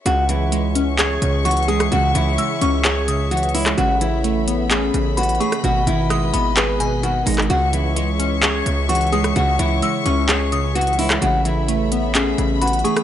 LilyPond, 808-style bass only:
\new Staff \with { instrumentName = "808-style bass" } { \clef bass \time 4/4 \key cis \minor \tempo 4 = 129 cis,2~ cis,8 cis,4. | cis,8 cis,8 r8 cis,2~ cis,8 | a,,2~ a,,8 a,,4 r8 | gis,,8 gis,,4 gis,,2 gis,,8 |
cis,2~ cis,8 cis,4. | cis,8 cis,8 r8 cis,2~ cis,8 | a,,2~ a,,8 a,,4 r8 | }